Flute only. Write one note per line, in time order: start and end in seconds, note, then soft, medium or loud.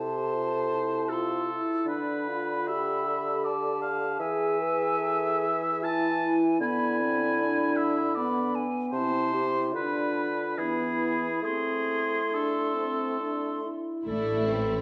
0.00 1.14 A5 soft
1.13 1.61 C6 soft
1.88 3.48 B5 soft
3.46 4.23 A5 soft
4.21 5.62 G#5 medium
5.84 6.61 G#5 soft
6.62 7.00 B5 medium
7.00 8.14 B5 medium
8.17 8.57 B5 medium
8.55 8.95 G#5 soft
8.94 9.46 A5 medium
9.76 10.54 B5 soft
10.58 11.43 B5 soft
11.44 13.68 C6 soft